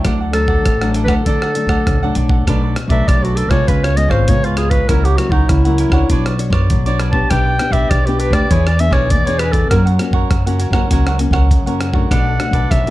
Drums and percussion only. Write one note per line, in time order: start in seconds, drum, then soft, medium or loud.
0.05 kick medium
0.05 cross-stick medium
0.05 closed hi-hat medium
0.33 cross-stick medium
0.33 closed hi-hat soft
0.48 kick medium
0.66 kick medium
0.66 cross-stick medium
0.66 closed hi-hat medium
0.82 cross-stick medium
0.82 closed hi-hat soft
0.94 closed hi-hat soft
1.08 kick medium
1.08 cross-stick medium
1.08 closed hi-hat soft
1.26 kick medium
1.26 closed hi-hat medium
1.42 cross-stick medium
1.55 closed hi-hat soft
1.69 kick medium
1.69 cross-stick medium
1.87 kick medium
1.87 cross-stick medium
1.87 closed hi-hat medium
2.15 closed hi-hat soft
2.29 kick medium
2.47 kick medium
2.47 cross-stick medium
2.47 closed hi-hat medium
2.76 cross-stick medium
2.76 closed hi-hat soft
2.90 kick medium
2.90 closed hi-hat soft
3.08 kick medium
3.08 cross-stick medium
3.08 closed hi-hat medium
3.25 closed hi-hat soft
3.37 closed hi-hat soft
3.51 kick medium
3.51 cross-stick medium
3.51 closed hi-hat soft
3.68 kick medium
3.68 closed hi-hat medium
3.84 cross-stick medium
3.84 closed hi-hat soft
3.97 closed hi-hat soft
4.11 kick medium
4.11 cross-stick medium
4.28 kick medium
4.28 closed hi-hat medium
4.44 closed hi-hat soft
4.57 cross-stick medium
4.57 closed hi-hat soft
4.71 kick medium
4.71 closed hi-hat soft
4.89 kick medium
4.89 cross-stick medium
4.89 closed hi-hat medium
5.05 closed hi-hat soft
5.18 cross-stick medium
5.18 closed hi-hat soft
5.32 kick medium
5.49 kick medium
5.49 cross-stick medium
5.49 closed hi-hat medium
5.65 closed hi-hat soft
5.78 closed hi-hat soft
5.92 kick medium
5.92 cross-stick medium
6.10 kick medium
6.10 closed hi-hat medium
6.26 cross-stick medium
6.26 closed hi-hat soft
6.39 closed hi-hat soft
6.53 kick medium
6.53 cross-stick medium
6.70 kick medium
6.70 closed hi-hat medium
6.86 closed hi-hat soft
7.00 cross-stick medium
7.00 closed hi-hat soft
7.13 kick medium
7.31 kick medium
7.31 cross-stick medium
7.31 closed hi-hat medium
7.59 cross-stick medium
7.59 closed hi-hat soft
7.73 kick medium
7.73 closed hi-hat soft
7.91 kick medium
7.91 cross-stick medium
7.91 closed hi-hat medium
8.07 closed hi-hat soft
8.20 closed hi-hat soft
8.33 kick medium
8.33 cross-stick medium
8.33 closed hi-hat soft
8.51 kick medium
8.51 closed hi-hat medium
8.67 cross-stick medium
8.67 closed hi-hat soft
8.79 closed hi-hat soft
8.93 kick medium
8.93 cross-stick medium
9.10 kick medium
9.10 closed hi-hat medium
9.27 closed hi-hat soft
9.39 cross-stick medium
9.39 closed hi-hat soft
9.53 kick medium
9.53 closed hi-hat soft
9.71 kick medium
9.71 cross-stick medium
9.71 closed hi-hat medium
9.87 closed hi-hat soft
9.99 cross-stick medium
9.99 closed hi-hat soft
10.13 kick medium
10.31 kick medium
10.31 cross-stick medium
10.31 closed hi-hat medium
10.47 closed hi-hat soft
10.60 closed hi-hat soft
10.73 kick medium
10.73 cross-stick medium
10.91 kick medium
10.91 closed hi-hat medium
11.07 cross-stick medium
11.07 closed hi-hat soft
11.19 closed hi-hat soft
11.33 kick medium
11.33 cross-stick medium
11.51 kick medium
11.51 closed hi-hat medium
11.67 closed hi-hat soft
11.81 cross-stick medium
11.81 closed hi-hat soft
11.94 kick medium
12.11 kick medium
12.11 cross-stick medium
12.11 closed hi-hat medium
12.40 cross-stick medium
12.40 closed hi-hat soft
12.53 kick medium
12.53 closed hi-hat soft
12.71 kick medium
12.71 cross-stick medium
12.71 closed hi-hat medium